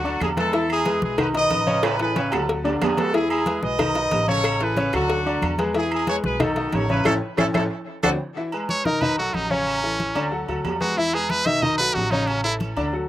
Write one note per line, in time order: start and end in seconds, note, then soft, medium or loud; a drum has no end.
0.00 0.18 D2 medium
0.00 0.31 D3 medium
0.00 0.18 D4 medium
0.00 0.18 F#4 loud
0.05 0.31 D4 medium
0.05 0.31 D5 medium
0.05 high conga soft
0.05 low agogo medium
0.20 0.97 E2 medium
0.20 0.29 D4 medium
0.20 0.29 G#4 medium
0.20 cowbell medium
0.20 high conga medium
0.20 low timbale medium
0.20 low agogo loud
0.20 claves medium
0.37 0.50 G#3 medium
0.37 0.68 E4 medium
0.37 0.50 G#4 medium
0.37 0.68 A4 loud
0.37 0.51 B4 medium
0.37 cowbell medium
0.37 high conga medium
0.37 low agogo medium
0.53 0.80 E3 medium
0.53 0.80 E4 medium
0.53 0.80 E5 loud
0.53 cowbell loud
0.70 1.01 E4 medium
0.70 1.01 G#4 loud
0.70 high conga soft
0.70 low agogo loud
0.70 claves medium
0.85 1.12 G#3 medium
0.85 1.13 G#4 medium
0.85 1.13 B4 medium
0.85 cowbell medium
0.85 high conga loud
0.85 low agogo medium
1.02 1.48 B1 loud
1.02 1.18 E4 medium
1.02 1.18 G#4 medium
1.02 high conga loud
1.18 1.32 D#3 medium
1.18 1.32 D#4 medium
1.18 1.27 F#4 medium
1.18 1.28 B4 medium
1.18 1.32 D#5 medium
1.18 cowbell loud
1.18 high conga soft
1.18 low conga medium
1.18 low agogo loud
1.18 claves medium
1.34 1.61 D#3 medium
1.34 1.61 D#4 medium
1.34 1.81 B4 medium
1.34 1.62 D#5 medium
1.34 1.81 D#5 loud
1.34 cowbell medium
1.50 2.27 A1 medium
1.50 cowbell medium
1.50 high conga medium
1.50 low agogo medium
1.67 1.94 C#3 medium
1.67 1.94 C#4 loud
1.67 1.94 C#5 loud
1.67 high conga medium
1.67 low agogo medium
1.83 2.00 E4 medium
1.83 1.99 B4 loud
1.83 cowbell loud
1.83 high conga soft
1.83 high timbale loud
1.83 low agogo loud
1.83 claves medium
1.99 2.13 E3 medium
1.99 2.13 E4 medium
1.99 2.46 G#4 medium
1.99 2.13 A4 medium
1.99 2.46 B4 loud
1.99 cowbell medium
1.99 high conga soft
2.16 2.29 C#3 medium
2.16 2.29 C#4 medium
2.16 2.30 C#5 medium
2.16 cowbell medium
2.16 high conga loud
2.16 high timbale medium
2.16 low agogo medium
2.31 2.78 D2 medium
2.31 2.59 F#3 medium
2.31 2.59 F#4 medium
2.31 2.59 A4 medium
2.31 cowbell medium
2.31 high conga soft
2.31 low timbale medium
2.31 low agogo loud
2.31 claves medium
2.49 cowbell loud
2.49 high conga soft
2.64 2.91 D3 medium
2.64 2.92 D4 medium
2.64 2.92 D5 medium
2.64 high conga soft
2.64 low timbale medium
2.64 low agogo medium
2.81 3.57 E2 medium
2.81 2.97 D4 medium
2.81 2.97 G#4 medium
2.81 cowbell medium
2.81 high conga medium
2.81 low timbale loud
2.81 low agogo loud
2.81 claves medium
2.97 3.11 G#3 medium
2.97 3.14 F#4 medium
2.97 3.11 G#4 medium
2.97 3.14 A4 loud
2.97 3.11 B4 medium
2.97 cowbell medium
2.97 high conga medium
2.97 low timbale medium
2.97 low agogo medium
3.14 3.40 E3 medium
3.14 3.29 E4 medium
3.14 3.41 E4 loud
3.14 3.29 G#4 loud
3.14 3.41 E5 medium
3.14 cowbell loud
3.14 high conga soft
3.30 3.61 E4 medium
3.30 3.60 G#4 loud
3.30 high conga soft
3.30 low agogo loud
3.30 claves medium
3.46 3.73 G#3 medium
3.46 3.73 G#4 medium
3.46 3.74 B4 medium
3.46 cowbell medium
3.46 high conga loud
3.46 low agogo medium
3.63 4.08 B1 medium
3.63 4.28 B4 medium
3.63 4.28 D#5 loud
3.63 high conga loud
3.79 3.93 D#3 medium
3.79 3.93 D#4 medium
3.79 3.93 D#5 medium
3.79 cowbell loud
3.79 high conga soft
3.79 low conga medium
3.79 low agogo loud
3.79 claves medium
3.95 4.22 D#3 medium
3.95 4.23 D#4 medium
3.95 4.23 D#5 medium
3.95 cowbell medium
3.95 high conga soft
4.11 4.88 A1 medium
4.11 cowbell medium
4.11 high conga medium
4.11 low timbale medium
4.11 low agogo medium
4.28 4.55 C#3 loud
4.28 4.55 C#4 medium
4.28 4.59 A4 medium
4.28 4.55 C#5 medium
4.28 4.59 C#5 loud
4.28 high conga medium
4.28 low agogo medium
4.44 cowbell loud
4.44 low agogo loud
4.44 claves medium
4.60 4.74 E3 medium
4.60 4.74 E4 medium
4.60 4.94 G#4 medium
4.60 4.74 A4 medium
4.60 4.94 B4 loud
4.60 cowbell medium
4.60 high conga soft
4.77 4.90 C#3 medium
4.77 4.90 C#4 medium
4.77 4.91 C#5 medium
4.77 cowbell medium
4.77 high conga loud
4.77 low agogo medium
4.93 5.39 D2 loud
4.93 5.20 F#3 medium
4.93 5.55 D4 medium
4.93 5.20 F#4 medium
4.93 5.55 F#4 loud
4.93 5.20 A4 medium
4.93 cowbell medium
4.93 high conga soft
4.93 low agogo loud
4.93 claves medium
5.09 cowbell loud
5.09 high conga soft
5.26 5.53 D3 medium
5.26 5.53 D4 medium
5.26 5.53 D5 medium
5.26 high conga soft
5.26 low agogo medium
5.42 6.18 E2 medium
5.42 cowbell medium
5.42 high conga medium
5.42 low agogo loud
5.42 claves medium
5.58 5.72 G#3 medium
5.58 5.72 G#4 medium
5.58 5.72 B4 medium
5.58 cowbell medium
5.58 high conga medium
5.58 low agogo medium
5.74 6.02 E3 loud
5.74 6.02 E4 medium
5.74 5.91 E4 medium
5.74 5.91 G#4 loud
5.74 6.02 E5 medium
5.74 cowbell loud
5.74 high conga soft
5.91 6.07 E4 medium
5.91 6.08 G#4 loud
5.91 high conga soft
5.91 low agogo medium
5.91 claves medium
6.07 6.34 G#3 medium
6.07 6.35 G#4 medium
6.07 6.17 G#4 medium
6.07 6.35 B4 medium
6.07 6.17 C#5 loud
6.07 cowbell medium
6.07 high conga loud
6.07 low agogo medium
6.24 6.69 B1 medium
6.24 6.40 G#4 medium
6.24 6.40 B4 loud
6.24 high conga loud
6.40 6.53 D#3 medium
6.40 6.53 D#4 medium
6.40 6.72 F#4 medium
6.40 6.72 A4 medium
6.40 6.54 D#5 medium
6.40 cowbell loud
6.40 high conga soft
6.40 low conga loud
6.40 low agogo loud
6.40 claves medium
6.56 6.83 D#3 medium
6.56 6.83 D#4 medium
6.56 6.84 D#5 medium
6.56 cowbell medium
6.56 high conga soft
6.72 7.03 A1 medium
6.72 6.90 A4 medium
6.72 6.90 C#5 loud
6.72 cowbell medium
6.72 high conga medium
6.72 low timbale medium
6.72 low agogo medium
6.89 7.03 C#3 medium
6.89 7.03 C#4 medium
6.89 7.04 E4 medium
6.89 7.05 B4 loud
6.89 7.03 C#5 medium
6.89 high conga medium
6.89 low agogo medium
7.05 7.18 A1 medium
7.05 7.16 C#4 loud
7.05 7.13 C#4 loud
7.05 7.16 E4 loud
7.05 7.13 E4 loud
7.05 7.16 A4 loud
7.05 7.13 A4 loud
7.05 cowbell loud
7.05 high conga loud
7.05 high timbale loud
7.05 claves loud
7.37 7.50 A1 loud
7.37 7.46 C#4 loud
7.37 7.49 C#4 loud
7.37 7.49 E4 loud
7.37 7.46 E4 loud
7.37 7.46 A4 loud
7.37 7.49 A4 loud
7.37 cowbell loud
7.37 high conga loud
7.37 high timbale loud
7.37 claves loud
7.53 7.66 A1 medium
7.53 7.62 C#4 medium
7.53 7.65 C#4 loud
7.53 7.62 E4 loud
7.53 7.65 E4 loud
7.53 7.62 A4 medium
7.53 7.65 A4 loud
7.53 cowbell loud
7.53 high conga loud
7.53 high timbale loud
7.53 claves medium
8.03 8.16 D2 loud
8.03 8.14 C4 loud
8.03 8.11 D4 medium
8.03 8.14 D4 loud
8.03 8.11 F#4 loud
8.03 8.14 F#4 loud
8.03 8.11 A4 loud
8.03 cowbell loud
8.03 high conga loud
8.03 high timbale medium
8.03 claves loud
8.37 8.50 E3 medium
8.37 8.50 E4 medium
8.37 8.50 E5 medium
8.37 high conga soft
8.52 8.80 G#3 medium
8.52 8.80 G#4 medium
8.52 8.80 B4 medium
8.52 high conga soft
8.52 low agogo loud
8.69 8.87 C#5 medium
8.69 high conga loud
8.69 low agogo medium
8.85 9.30 B1 medium
8.85 8.99 D#3 medium
8.85 8.99 D#4 medium
8.85 9.03 A#4 medium
8.85 8.99 D#5 medium
8.85 high conga loud
9.01 9.15 D#3 medium
9.01 9.15 D#4 medium
9.01 9.18 B4 medium
9.01 9.15 D#5 medium
9.01 high conga soft
9.01 low conga medium
9.01 low agogo loud
9.18 9.45 F#3 medium
9.18 9.36 F#4 medium
9.18 9.45 F#4 medium
9.18 9.46 A4 medium
9.18 high conga soft
9.34 10.10 A1 medium
9.34 9.52 D#4 medium
9.34 high conga medium
9.34 low agogo medium
9.50 9.77 C#3 medium
9.50 9.77 C#4 medium
9.50 10.32 C#4 medium
9.50 9.78 C#5 loud
9.50 high conga medium
9.50 low agogo medium
9.67 high conga soft
9.67 low agogo loud
9.83 10.10 E3 medium
9.83 10.10 E4 medium
9.83 10.10 A4 medium
9.83 high conga soft
9.99 high conga loud
9.99 low agogo medium
10.15 10.46 D2 medium
10.15 10.29 D3 medium
10.15 10.29 D4 loud
10.15 10.29 D5 medium
10.15 high conga soft
10.15 low agogo loud
10.31 10.45 F#3 medium
10.31 10.45 F#4 medium
10.31 10.45 A4 medium
10.31 high conga soft
10.48 10.63 D2 medium
10.48 10.75 F#3 medium
10.48 10.76 F#4 medium
10.48 10.76 A4 medium
10.48 high conga soft
10.48 low agogo medium
10.65 11.41 E2 medium
10.65 high conga medium
10.65 low timbale medium
10.65 low agogo loud
10.81 10.94 G#3 medium
10.81 10.99 F#4 medium
10.81 10.94 G#4 medium
10.81 10.94 B4 medium
10.81 high conga medium
10.81 low agogo medium
10.97 11.11 E3 loud
10.97 11.11 E4 medium
10.97 11.16 E4 medium
10.97 11.11 E5 loud
10.97 high conga soft
11.13 11.41 G#3 medium
11.13 11.32 G#4 medium
11.13 11.41 G#4 medium
11.13 11.41 B4 medium
11.13 high conga soft
11.13 low agogo loud
11.29 11.48 B4 loud
11.29 high conga loud
11.29 low agogo medium
11.46 11.92 B1 medium
11.46 11.60 D#3 medium
11.46 11.60 D#4 loud
11.46 11.60 D#5 medium
11.46 11.64 E5 loud
11.46 high conga loud
11.62 11.76 D#3 loud
11.62 11.76 D#4 medium
11.62 11.77 D#5 medium
11.62 11.76 D#5 medium
11.62 high conga soft
11.62 low conga medium
11.62 low agogo loud
11.78 12.06 F#3 medium
11.78 12.06 F#4 medium
11.78 12.06 A4 medium
11.78 11.96 B4 loud
11.78 high conga soft
11.94 12.71 A1 medium
11.94 12.12 F#4 medium
11.94 high conga medium
11.94 low timbale medium
11.94 low agogo medium
12.11 12.39 C#3 medium
12.11 12.39 C#4 medium
12.11 12.29 D#4 medium
12.11 12.39 C#5 medium
12.11 high conga medium
12.11 low agogo medium
12.27 12.43 C#4 medium
12.27 low agogo loud
12.44 12.71 E3 medium
12.44 12.54 E4 loud
12.44 12.71 E4 medium
12.44 12.71 A4 medium
12.44 high conga soft
12.60 high conga loud
12.60 low agogo medium
12.77 13.09 D2 medium
12.77 12.90 D3 medium
12.77 12.90 D4 medium
12.77 12.90 D5 medium
12.77 high conga soft
12.77 low agogo loud
12.93 13.06 F#3 medium
12.93 13.07 F#4 medium
12.93 13.07 A4 medium
12.93 high conga soft